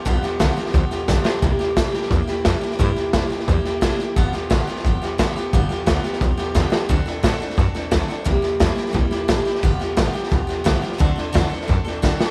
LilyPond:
<<
  \new Staff \with { instrumentName = "Steel-string acoustic guitar" } { \time 4/4 \key g \mixolydian \tempo 4 = 176 <g, d f b f' g'>8 <f b f' g'>8 <g, d f b f' g'>8 <f b f' g'>8 <f b f' g'>8 <f b f' g'>8 <g, d f b f' g'>8 <f b f' g'>8 | <c g bes e' g'>8 <bes e' g'>8 <c g bes e' g'>8 <bes e' g'>8 <g bes e' g'>8 <bes e' g'>8 <c g bes e' g'>8 <bes e' g'>8 | <c g bes e' g'>8 <bes e' g'>8 <c g bes e' g'>8 <bes e' g'>8 <g bes e' g'>8 <bes e' g'>8 <c g bes e' g'>8 <bes e' g'>8 | <g, d f b f' g'>8 <f b f' g'>8 <g, d f b f' g'>8 <f b f' g'>8 <f b f' g'>8 <f b f' g'>8 <g, d f b f' g'>8 <f b f' g'>8 |
<g, d f b f' g'>8 <f b f' g'>8 <g, d f b f' g'>8 <f b f' g'>8 <f b f' g'>8 <f b f' g'>8 <g, d f b f' g'>8 <f b f' g'>8 | <d fis c' d' a'>8 <c' d' a'>8 <d fis c' d' a'>8 <c' d' a'>8 <fis c' d' a'>8 <c' d' a'>8 <d fis c' d' a'>8 <c' d' a'>8 | <c g bes e' g'>8 <bes e' g'>8 <c g bes e' g'>8 <bes e' g'>8 <g bes e' g'>8 <bes e' g'>8 <c g bes e' g'>8 <bes e' g'>8 | <g, d f b f' g'>8 <f b f' g'>8 <g, d f b f' g'>8 <f b f' g'>8 <f b f' g'>8 <f b f' g'>8 <g, d f b f' g'>8 <f b f' g'>8 |
<d fis c' d' a'>8 <c' d' a'>8 <d fis c' d' a'>8 <c' d' a'>8 <fis c' d' a'>8 <c' d' a'>8 <d fis c' d' a'>8 <c' d' a'>8 | }
  \new Staff \with { instrumentName = "Upright bass" } { \clef bass \time 4/4 \key g \mixolydian b,,8 r8 c,8 r8 d,8 r8 b,,8 r8 | c,8 r8 d,8 r8 e,8 r8 f,8 r8 | g,8 r8 f,8 r8 e,8 r8 c,8 r8 | g,,8 r8 a,,8 r8 g,,8 r8 fis,,8 r8 |
g,,8 r8 d,8 r8 b,,8 r8 e,8 r8 | d,8 r8 a,8 r8 fis,8 r8 d,8 r8 | c,8 r8 e,8 r8 c,8 r8 a,,8 r8 | g,,8 r8 a,,8 r8 b,,8 r8 c,8 r8 |
d,8 r8 e,8 r8 fis,8 r8 d,8 r8 | }
  \new DrumStaff \with { instrumentName = "Drums" } \drummode { \time 4/4 <bd sn>8 sn8 <hhp bd sn>8 sn16 sn16 <bd sn>8 sn8 <hhp bd sn>8 sn8 | <bd sn>8 sn8 <hhp bd sn>8 sn16 sn16 <bd sn>8 sn8 <hhp bd sn>8 sn16 sn16 | <bd sn>8 sn8 <hhp bd sn>8 sn16 sn16 <bd sn>8 sn8 <hhp bd sn>8 sn8 | <bd sn>8 sn8 <hhp bd sn>8 sn16 sn16 <bd sn>8 sn8 <hhp bd sn>8 sn8 |
<bd sn>8 sn8 <hhp bd sn>8 sn16 sn16 <bd sn>8 sn8 <hhp bd sn>8 sn8 | <bd sn>8 sn8 <hhp bd sn>8 sn16 sn16 <bd sn>8 sn8 <hhp bd sn>8 sn8 | <bd sn>8 sn8 <hhp bd sn>8 sn16 sn16 <bd sn>8 sn8 <hhp bd sn>8 sn16 sn16 | <bd sn>8 sn8 <hhp bd sn>8 sn16 sn16 <bd sn>8 sn8 <hhp bd sn>8 sn16 sn16 |
<bd sn>8 sn8 <hhp bd sn>8 sn16 sn16 <bd sn>8 sn8 <hhp bd sn>8 sn8 | }
>>